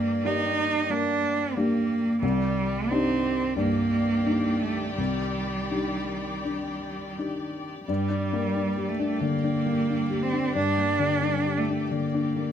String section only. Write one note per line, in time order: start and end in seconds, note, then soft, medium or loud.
0.00 2.17 A#3 soft
0.00 2.17 G4 soft
0.00 2.19 D5 soft
2.20 7.88 D#3 medium
2.20 7.84 G4 medium
2.20 7.83 D5 medium
7.86 12.52 G3 soft
7.86 12.52 G4 soft
7.86 12.52 D5 soft